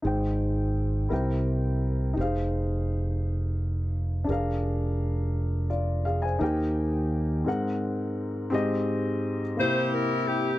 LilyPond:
<<
  \new Staff \with { instrumentName = "Upright piano" } { \time 6/8 \key aes \major \tempo 4. = 57 << { r2. | r2. | r2 <f' d''>8 <aes' f''>16 <c'' aes''>16~ | <c'' aes''>16 r2 r8. |
r2. | } \\ { <ees' aes' c'' g''>4. <e' bes' c'' g''>4. | <ees' g' aes' c'' f''>2. | <d' aes' bes' f''>2. | <ees' g' bes' g''>4. <c' aes' bes' ges''>4. |
<c' g' aes' ees''>4~ <c' g' aes' ees''>16 r16 <bes e' g' c''>4~ <bes e' g' c''>16 r16 | } >> }
  \new Staff \with { instrumentName = "Upright piano" } { \clef bass \time 6/8 \key aes \major aes,4. c4. | r2. | r2. | ees4. aes,4. |
aes,4. c4. | }
  \new Staff \with { instrumentName = "Saxophone section" } { \time 6/8 \key aes \major << { r2. | r2. | r2. | r2. |
r4. c''8 bes'8 g'8 | } \\ { r2. | r2. | r2. | r2. |
r4. <e' g'>4. | } >> }
  \new Staff \with { instrumentName = "Fingered electric bass" } { \clef bass \time 6/8 \key aes \major aes,,4. c,4. | f,,2. | f,,2. | ees,4. r4. |
r2. | }
>>